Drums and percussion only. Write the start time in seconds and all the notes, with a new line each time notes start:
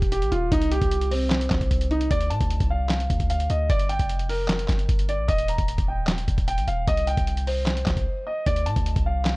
0.02 kick, closed hi-hat
0.12 closed hi-hat
0.22 closed hi-hat
0.32 closed hi-hat
0.52 kick, closed hi-hat
0.62 closed hi-hat
0.71 closed hi-hat
0.82 kick, closed hi-hat
0.91 closed hi-hat
1.01 closed hi-hat
1.11 open hi-hat
1.30 snare, clap, closed hi-hat
1.41 closed hi-hat
1.50 kick, snare, clap, closed hi-hat
1.61 kick, closed hi-hat
1.71 kick, closed hi-hat
1.81 closed hi-hat
1.91 closed hi-hat
2.01 closed hi-hat
2.11 kick, closed hi-hat
2.21 closed hi-hat
2.30 closed hi-hat
2.41 kick, closed hi-hat
2.50 closed hi-hat
2.60 kick, closed hi-hat
2.89 snare, clap, closed hi-hat
3.00 closed hi-hat
3.10 kick, closed hi-hat
3.20 kick, closed hi-hat
3.30 closed hi-hat
3.40 closed hi-hat
3.50 closed hi-hat
3.70 kick, closed hi-hat
3.79 closed hi-hat
3.89 closed hi-hat
3.99 kick, closed hi-hat
4.09 closed hi-hat
4.19 closed hi-hat
4.29 open hi-hat
4.48 snare, clap, closed hi-hat
4.59 closed hi-hat
4.68 kick, snare, clap, closed hi-hat
4.79 closed hi-hat
4.89 kick, closed hi-hat
4.99 closed hi-hat
5.09 closed hi-hat
5.29 kick, closed hi-hat
5.38 closed hi-hat
5.48 closed hi-hat
5.58 kick, closed hi-hat
5.68 closed hi-hat
5.78 kick, closed hi-hat
6.07 snare, clap, closed hi-hat
6.18 closed hi-hat
6.28 kick, closed hi-hat
6.38 kick, closed hi-hat
6.48 closed hi-hat
6.58 closed hi-hat
6.68 closed hi-hat
6.88 kick, closed hi-hat
6.97 closed hi-hat
7.07 closed hi-hat
7.17 kick, closed hi-hat
7.27 closed hi-hat
7.37 closed hi-hat
7.47 open hi-hat
7.66 snare, clap, closed hi-hat
7.77 closed hi-hat
7.86 kick, snare, clap, closed hi-hat
7.97 kick, closed hi-hat
8.46 kick, closed hi-hat
8.56 closed hi-hat
8.66 closed hi-hat
8.76 kick, closed hi-hat
8.86 closed hi-hat
8.96 kick, closed hi-hat
9.25 snare, clap, closed hi-hat